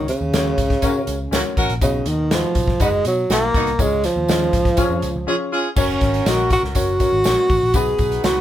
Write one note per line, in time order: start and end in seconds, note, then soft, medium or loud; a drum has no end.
0.00 0.12 C#2 medium
0.00 0.54 C#3 medium
0.00 0.13 C#4 medium
0.00 0.13 F#4 medium
0.00 0.14 A#4 medium
0.00 0.14 C#5 medium
0.08 1.53 C#3 loud
0.08 closed hi-hat medium
0.08 tambourine soft
0.21 0.30 D#2 medium
0.33 0.52 D#2 medium
0.33 0.62 C#4 medium
0.33 0.62 F#4 medium
0.33 0.63 A#4 medium
0.33 0.63 C#5 medium
0.33 snare loud
0.33 closed hi-hat medium
0.33 tambourine medium
0.58 0.77 C#2 medium
0.58 kick medium
0.58 closed hi-hat medium
0.58 tambourine medium
0.70 kick medium
0.70 snare soft
0.70 closed hi-hat soft
0.82 1.01 C#3 loud
0.82 0.90 A#3 medium
0.82 1.12 C#4 medium
0.82 0.91 C#4 medium
0.82 0.90 F#4 medium
0.82 1.12 F#4 medium
0.82 1.12 A#4 medium
0.82 1.12 C#5 medium
0.82 kick medium
0.82 closed hi-hat medium
0.82 tambourine medium
1.07 1.26 C#2 medium
1.07 closed hi-hat medium
1.07 tambourine medium
1.31 1.41 C#2 medium
1.31 1.40 A#3 medium
1.31 1.61 C#4 medium
1.31 1.40 C#4 loud
1.31 1.61 F#4 medium
1.31 1.40 F#4 loud
1.31 1.62 A#4 medium
1.31 1.62 C#5 medium
1.31 snare loud
1.31 closed hi-hat medium
1.31 tambourine loud
1.57 1.66 A1 medium
1.57 1.73 C#4 medium
1.57 1.73 F#4 loud
1.57 1.73 A#4 loud
1.57 kick loud
1.57 closed hi-hat medium
1.57 tambourine soft
1.69 1.79 A#1 medium
1.69 closed hi-hat soft
1.81 2.00 B1 loud
1.81 2.52 B2 medium
1.81 2.10 C#3 medium
1.81 2.11 D#4 medium
1.81 2.11 F#4 medium
1.81 2.11 B4 medium
1.81 2.11 D#5 medium
1.81 kick loud
1.81 closed hi-hat medium
1.81 tambourine loud
2.06 2.44 D#2 medium
2.06 2.32 D#3 medium
2.06 closed hi-hat medium
2.06 tambourine medium
2.31 2.84 F3 medium
2.31 2.60 D#4 medium
2.31 2.60 F#4 medium
2.31 2.61 B4 medium
2.31 2.61 D#5 medium
2.31 snare loud
2.31 closed hi-hat medium
2.31 tambourine medium
2.55 2.74 B1 medium
2.55 kick medium
2.55 closed hi-hat medium
2.55 tambourine soft
2.68 kick medium
2.68 snare soft
2.80 2.99 F#1 medium
2.80 3.06 G#3 loud
2.80 3.09 D#4 medium
2.80 2.88 D#4 medium
2.80 3.10 F#4 medium
2.80 2.88 F#4 loud
2.80 2.88 B4 loud
2.80 3.10 B4 medium
2.80 3.10 D#5 medium
2.80 kick medium
2.80 closed hi-hat medium
2.80 tambourine medium
3.05 3.24 B2 medium
3.05 3.29 F#3 medium
3.05 closed hi-hat medium
3.05 tambourine medium
3.29 3.49 B1 medium
3.29 3.83 A#3 loud
3.29 3.37 B3 loud
3.29 3.59 D#4 medium
3.29 3.38 D#4 medium
3.29 3.38 F#4 loud
3.29 3.59 F#4 medium
3.29 3.59 B4 medium
3.29 3.60 F#5 medium
3.29 snare loud
3.29 closed hi-hat medium
3.29 tambourine medium
3.54 3.73 C2 medium
3.54 3.70 B3 loud
3.54 3.70 D#4 loud
3.54 3.70 F#4 loud
3.54 kick loud
3.54 closed hi-hat medium
3.54 tambourine soft
3.67 closed hi-hat soft
3.79 4.07 C#2 loud
3.79 4.49 C#3 medium
3.79 4.07 G#3 loud
3.79 4.08 C#4 medium
3.79 4.08 F4 medium
3.79 4.09 G#4 medium
3.79 4.09 C#5 medium
3.79 kick loud
3.79 closed hi-hat medium
3.79 tambourine loud
4.04 5.53 F3 loud
4.04 snare soft
4.04 closed hi-hat medium
4.04 tambourine medium
4.16 4.25 D#2 medium
4.28 4.47 D#2 medium
4.28 4.58 C#4 medium
4.28 4.58 F4 medium
4.28 4.58 G#4 medium
4.28 4.58 D#5 medium
4.28 snare loud
4.28 closed hi-hat medium
4.28 tambourine medium
4.53 4.72 C#2 medium
4.53 kick medium
4.53 closed hi-hat medium
4.53 tambourine soft
4.65 kick loud
4.65 snare soft
4.65 closed hi-hat soft
4.77 5.07 C#4 medium
4.77 4.85 C#4 medium
4.77 5.07 F4 medium
4.77 4.86 F4 medium
4.77 4.86 G#4 loud
4.77 5.07 G#4 medium
4.77 5.07 C#5 loud
4.77 kick medium
4.77 closed hi-hat medium
4.77 tambourine medium
4.91 5.00 F2 medium
5.02 5.12 C#2 medium
5.02 closed hi-hat medium
5.02 tambourine medium
5.16 5.25 C#2 medium
5.27 5.56 C#4 medium
5.27 5.35 C#4 medium
5.27 5.56 F4 medium
5.27 5.35 F4 loud
5.27 5.56 G#4 medium
5.27 5.35 G#4 loud
5.27 5.57 C#5 medium
5.52 5.68 C#4 loud
5.52 5.68 F4 loud
5.52 5.68 G#4 loud
5.76 5.95 F#1 loud
5.76 6.06 C#4 medium
5.76 7.46 C#4 medium
5.76 6.29 C#4 medium
5.76 7.46 F#4 medium
5.76 6.06 F#4 medium
5.76 7.46 A#4 loud
5.76 6.06 A#4 medium
5.76 6.06 C#5 loud
5.76 kick loud
5.76 crash medium
5.76 tambourine loud
6.01 6.20 G#1 medium
6.01 kick medium
6.01 snare soft
6.01 closed hi-hat medium
6.01 tambourine medium
6.14 closed hi-hat soft
6.26 6.54 A#1 medium
6.26 6.55 C#4 medium
6.26 6.55 F#4 medium
6.26 6.51 F#4 medium
6.26 6.56 A#4 medium
6.26 6.56 D#5 medium
6.26 snare loud
6.26 closed hi-hat medium
6.26 tambourine medium
6.50 6.63 F#4 loud
6.50 kick medium
6.50 closed hi-hat medium
6.50 tambourine soft
6.63 6.73 C#2 medium
6.63 snare soft
6.75 7.04 F#1 medium
6.75 6.90 C#4 medium
6.75 6.90 F#4 medium
6.75 7.77 F#4 loud
6.75 6.90 A#4 medium
6.75 6.90 C#5 medium
6.75 kick medium
6.75 closed hi-hat medium
6.75 tambourine medium
7.00 7.14 C#4 medium
7.00 7.15 F#4 medium
7.00 7.15 A#4 medium
7.00 7.15 C#5 medium
7.00 kick medium
7.00 closed hi-hat medium
7.00 tambourine medium
7.13 7.22 G#1 medium
7.24 7.34 A#1 medium
7.24 7.54 C#4 medium
7.24 7.54 F#4 medium
7.24 7.55 A#4 medium
7.24 7.55 C#5 medium
7.24 snare loud
7.24 closed hi-hat medium
7.24 tambourine loud
7.49 7.59 A1 medium
7.49 kick loud
7.49 open hi-hat soft
7.49 tambourine soft
7.62 7.71 A#1 medium
7.74 7.93 B1 loud
7.74 8.41 B2 medium
7.74 8.03 B3 medium
7.74 8.41 D#4 medium
7.74 8.04 D#4 medium
7.74 8.41 F#4 medium
7.74 8.04 F#4 medium
7.74 8.24 G#4 loud
7.74 8.41 B4 loud
7.74 8.04 B4 loud
7.74 kick loud
7.74 closed hi-hat medium
7.74 tambourine loud
7.99 8.18 B1 medium
7.99 kick medium
7.99 closed hi-hat medium
7.99 tambourine medium
8.12 closed hi-hat medium
8.23 8.41 C#2 loud
8.23 8.41 B3 medium
8.23 8.41 D#4 medium
8.23 8.41 F#4 medium
8.23 8.41 B4 medium
8.23 snare loud
8.23 closed hi-hat medium
8.23 tambourine medium